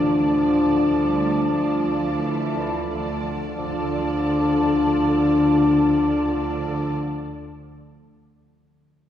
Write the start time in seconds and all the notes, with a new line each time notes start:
Already playing: D2 D3 F3 A3 D4 F4 D5 A5
0.20 A3 D4 F4 D5 A5
0.54 A4
0.86 D2 G3 F4
1.19 D5
1.53 F3 A3 F4 D5 A5
1.87 A4
2.19 D2 E3 D4
2.55 F3
2.88 D3 A3 D4 F4 D5 A5
3.23 F3
3.55 D2 D3 F3 D4 F4 A4 D5 A5
3.65 F3
3.72 D4
3.79 A4
3.86 D5